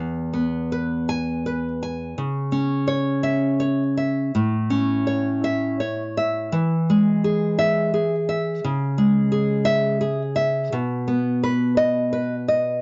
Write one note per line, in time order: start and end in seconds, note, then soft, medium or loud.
0.00 2.13 E2 soft
0.33 1.46 B3 soft
0.72 1.45 B4 soft
1.09 1.68 G#5 medium
1.46 2.17 B4 soft
1.83 2.17 G#5 soft
2.18 4.31 C#3 soft
2.52 3.61 C#4 soft
2.88 3.59 C#5 soft
3.23 3.83 E5 medium
3.60 4.33 C#5 soft
3.97 4.34 E5 soft
4.35 6.49 A2 soft
4.70 5.80 C#4 soft
5.07 5.79 C#5 soft
5.44 6.02 E5 medium
5.80 6.53 C#5 soft
6.17 6.53 E5 soft
6.52 8.59 E3 soft
6.90 7.94 G#3 soft
7.24 7.92 G#4 soft
7.59 8.15 E5 medium
7.94 8.64 G#4 soft
8.29 8.64 E5 soft
8.64 10.69 C#3 medium
8.98 10.02 G#3 soft
9.32 10.00 G#4 soft
9.65 10.21 E5 medium
10.01 10.73 G#4 soft
10.36 10.72 E5 soft
10.72 12.81 B2 medium
11.08 12.12 B3 soft
11.44 11.77 B4 soft
11.77 12.34 D#5 medium
12.13 12.82 B4 soft
12.48 12.82 D#5 soft